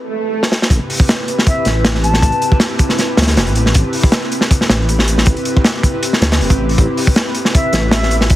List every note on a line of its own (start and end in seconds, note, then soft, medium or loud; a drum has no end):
0.00 swell medium
0.43 snare soft
0.52 snare medium
0.62 snare medium
0.70 0.80 A1 loud
0.70 1.35 C4 loud
0.70 1.35 E4 medium
0.70 1.35 G4 medium
0.70 1.35 B4 loud
0.70 kick loud
0.70 closed hi-hat medium
0.90 open hi-hat medium
1.00 kick loud
1.09 snare loud
1.09 closed hi-hat medium
1.28 closed hi-hat medium
1.38 2.21 C4 medium
1.38 2.20 E4 medium
1.38 2.21 G4 medium
1.38 2.21 B4 medium
1.38 snare soft
1.47 1.70 E5 medium
1.47 kick loud
1.47 closed hi-hat medium
1.65 2.21 A1 loud
1.65 snare soft
1.65 closed hi-hat medium
1.85 snare loud
1.85 closed hi-hat medium
1.95 snare soft
2.04 2.57 A5 medium
2.04 closed hi-hat medium
2.13 snare soft
2.22 2.32 A1 loud
2.22 2.87 C4 medium
2.22 2.87 E4 medium
2.22 2.87 G4 medium
2.22 2.87 B4 loud
2.22 kick loud
2.22 closed hi-hat medium
2.32 closed hi-hat soft
2.42 closed hi-hat medium
2.52 kick medium
2.60 snare loud
2.60 closed hi-hat medium
2.79 kick medium
2.79 closed hi-hat medium
2.89 3.73 C4 medium
2.89 3.73 E4 medium
2.89 3.73 G4 medium
2.89 3.72 B4 medium
2.89 snare soft
2.98 snare soft
2.98 closed hi-hat medium
3.17 3.38 D2 medium
3.17 snare medium
3.17 closed hi-hat medium
3.22 snare loud
3.22 closed hi-hat medium
3.27 snare loud
3.27 closed hi-hat medium
3.37 3.48 E1 medium
3.37 snare loud
3.37 closed hi-hat medium
3.47 3.73 A1 medium
3.47 closed hi-hat soft
3.55 closed hi-hat medium
3.66 snare soft
3.74 3.84 A1 loud
3.74 4.39 C4 loud
3.74 4.39 E4 medium
3.74 4.39 G4 medium
3.74 4.39 B4 loud
3.74 kick loud
3.74 closed hi-hat medium
3.93 open hi-hat medium
4.03 kick loud
4.12 snare loud
4.12 closed hi-hat medium
4.32 closed hi-hat medium
4.41 5.24 C4 medium
4.41 5.24 E4 medium
4.41 5.24 G4 medium
4.41 5.25 B4 medium
4.41 snare soft
4.51 kick loud
4.51 closed hi-hat medium
4.61 snare soft
4.70 5.25 A1 loud
4.70 snare loud
4.70 closed hi-hat medium
4.89 closed hi-hat medium
4.99 snare soft
5.08 closed hi-hat medium
5.18 snare soft
5.26 5.36 A1 loud
5.26 5.91 C4 medium
5.26 5.91 E4 medium
5.26 5.91 G4 medium
5.26 5.91 B4 loud
5.26 kick loud
5.26 closed hi-hat medium
5.37 closed hi-hat soft
5.45 closed hi-hat medium
5.57 kick loud
5.64 snare loud
5.64 closed hi-hat medium
5.83 kick loud
5.83 closed hi-hat medium
5.94 6.20 C4 medium
5.94 6.20 E4 medium
5.94 6.20 G4 medium
5.94 6.20 B4 medium
6.03 closed hi-hat medium
6.13 snare soft
6.21 6.42 D2 medium
6.21 6.76 C4 loud
6.21 6.76 E4 medium
6.21 6.76 G4 medium
6.21 6.76 B4 loud
6.21 snare loud
6.21 closed hi-hat medium
6.32 snare loud
6.32 closed hi-hat medium
6.41 6.52 E1 medium
6.41 open hi-hat medium
6.50 6.77 A1 medium
6.50 kick loud
6.50 closed hi-hat medium
6.69 open hi-hat medium
6.78 6.87 A1 loud
6.78 7.43 C4 loud
6.78 7.43 E4 medium
6.78 7.43 G4 medium
6.78 7.43 B4 loud
6.78 kick loud
6.78 closed hi-hat medium
6.97 open hi-hat medium
7.07 kick loud
7.16 snare loud
7.16 closed hi-hat medium
7.34 closed hi-hat medium
7.45 8.28 C4 medium
7.45 8.28 E4 medium
7.45 8.28 G4 medium
7.45 8.28 B4 medium
7.45 snare soft
7.55 7.78 E5 medium
7.55 kick loud
7.55 closed hi-hat medium
7.73 8.29 A1 loud
7.73 snare soft
7.73 closed hi-hat medium
7.91 8.15 E5 loud
7.91 snare loud
7.91 closed hi-hat medium
8.03 snare soft
8.11 closed hi-hat medium
8.21 snare soft
8.30 8.36 A1 loud
8.30 8.36 C4 loud
8.30 8.36 E4 medium
8.30 8.36 G4 medium
8.30 8.36 B4 loud
8.30 kick loud
8.30 closed hi-hat medium